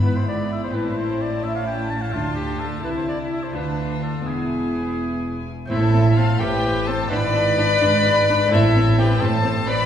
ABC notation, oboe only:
X:1
M:6/8
L:1/16
Q:3/8=85
K:Am
V:1 name="Oboe"
B c d2 e c B2 c2 d2 | e f g2 a f F2 G2 A2 | B c d2 e c B4 A2 | ^G8- G2 z2 |
E4 F2 G4 A2 | B12 | E4 G2 A4 B2 |]